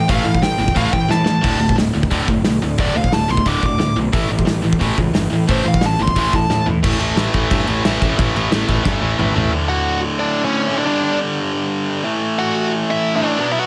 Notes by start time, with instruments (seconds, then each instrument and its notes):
0.08 picked electric bass A1, distorted electric guitar A2 E3 A3, lead electric guitar F5, kick, open hi-hat
0.24 distorted electric guitar A2 E3, picked electric bass A2
0.34 kick
0.42 picked electric bass A1, distorted electric guitar A2 E3, lead electric guitar G5, snare, open hi-hat
0.58 picked electric bass G1, distorted electric guitar A2 E3
0.68 kick
0.75 picked electric bass A1, distorted electric guitar A2 E3 A3, lead electric guitar F5, kick, open hi-hat
0.93 picked electric bass A2, distorted electric guitar A2 E3, lead electric guitar G5, kick
1.08 distorted electric guitar A2 E3, picked electric bass A2, lead electric guitar A5, snare
1.24 distorted electric guitar A2 E3, picked electric bass A2, snare
1.41 picked electric bass D1, distorted electric guitar D2 A2 D3, kick, open hi-hat, crash
1.59 picked electric bass D1, distorted electric guitar D2 A2
1.69 kick
1.76 picked electric bass D1, distorted electric guitar D2 A2, snare, open hi-hat
1.93 picked electric bass D1, distorted electric guitar D2 A2
2.03 kick
2.11 picked electric bass D1, distorted electric guitar D2 A2 D3, kick, open hi-hat
2.28 picked electric bass F#1, distorted electric guitar D2 A2, kick
2.44 picked electric bass B1, distorted electric guitar D2 A2, snare, open hi-hat
2.62 distorted electric guitar D2 A2, picked electric bass D2
2.78 picked electric bass D1, distorted electric guitar D2 A2 D3, lead electric guitar D5, kick, open hi-hat
2.95 picked electric bass D2, distorted electric guitar D2 A2, lead electric guitar F5
3.04 kick
3.13 picked electric bass D1, distorted electric guitar D2 A2, lead electric guitar A5, snare, open hi-hat
3.29 picked electric bass B1, distorted electric guitar D2 A2, lead electric guitar C6
3.37 kick
3.46 picked electric bass D1, distorted electric guitar D2 A2 D3, lead electric guitar D6, kick, open hi-hat
3.62 distorted electric guitar D2 A2, picked electric bass D2, lead electric guitar D6, kick
3.79 distorted electric guitar D2 A2, picked electric bass D2, snare, open hi-hat
3.96 picked electric bass B1, distorted electric guitar D2 A2
4.13 picked electric bass A1, distorted electric guitar A2 E3 A3, kick, open hi-hat
4.29 picked electric bass A1, distorted electric guitar A2 E3
4.39 kick
4.45 picked electric bass A1, distorted electric guitar A2 E3, snare, open hi-hat
4.62 picked electric bass A1, distorted electric guitar A2 E3
4.73 kick
4.79 picked electric bass A1, distorted electric guitar A2 E3 A3, kick, open hi-hat
4.96 picked electric bass C#2, distorted electric guitar A2 E3, kick
5.14 picked electric bass G1, distorted electric guitar A2 E3, snare, open hi-hat
5.30 distorted electric guitar A2 E3, picked electric bass A2
5.47 picked electric bass A1, distorted electric guitar A2 E3 A3, lead electric guitar C5, kick, open hi-hat
5.64 distorted electric guitar A2 E3, picked electric bass A2
5.68 lead electric guitar F5
5.74 kick
5.81 picked electric bass A1, distorted electric guitar A2 E3, snare, open hi-hat
5.86 lead electric guitar A5
5.99 picked electric bass G1, distorted electric guitar A2 E3, lead electric guitar C6
6.07 kick
6.16 picked electric bass A1, distorted electric guitar A2 E3 A3, lead electric guitar C6, kick, open hi-hat
6.33 picked electric bass A2, distorted electric guitar A2 E3, lead electric guitar A5, kick
6.50 distorted electric guitar A2 E3, picked electric bass A2, snare
6.66 picked electric bass A2, distorted electric guitar A2 E3, floor tom
6.83 picked electric bass A1, distorted electric guitar A2 E3 A3, kick, crash
7.00 picked electric bass A1, distorted electric guitar A2 E3 A3, crash
7.16 picked electric bass A1, distorted electric guitar A2 E3 A3, snare, crash
7.33 picked electric bass A1, distorted electric guitar A2 E3 A3, kick, crash
7.51 picked electric bass G2, distorted electric guitar A2 E3 A3, kick, crash
7.67 picked electric bass A1, distorted electric guitar A2 E3 A3, crash
7.85 picked electric bass A1, distorted electric guitar A2 E3 A3, snare, crash
8.02 picked electric bass A1, distorted electric guitar A2 E3 A3, kick, crash
8.18 picked electric bass A1, distorted electric guitar A2 E3 A3, kick, crash
8.35 picked electric bass A1, distorted electric guitar A2 E3 A3, crash
8.51 picked electric bass A1, distorted electric guitar A2 E3 A3, snare, crash
8.68 picked electric bass A1, distorted electric guitar A2 E3 A3, kick, crash
8.83 picked electric bass G2, distorted electric guitar A2 E3 A3, kick, snare
9.01 picked electric bass A1, distorted electric guitar A2 E3 A3
9.17 picked electric bass A1, distorted electric guitar A2 E3 A3, mid tom
9.35 picked electric bass A1, distorted electric guitar A2 E3 A3, floor tom
9.51 distorted electric guitar D2 A2 D3
9.69 lead electric guitar F#4 F#5
10.19 lead electric guitar D4 D5
10.44 lead electric guitar C#4 C#5
10.68 distorted electric guitar D2 A2 D3
10.78 lead electric guitar D4 D5
10.85 distorted electric guitar G2 D3 G3, lead electric guitar D4 D5
12.04 distorted electric guitar A2 E3 A3
12.39 lead electric guitar F#4 F#5
12.90 lead electric guitar E4 E5
13.16 lead electric guitar D4 D5
13.22 distorted electric guitar A2 E3 A3
13.39 distorted electric guitar B2 F#3 B3
13.52 lead electric guitar E4 E5
13.59 lead electric guitar F#4 F#5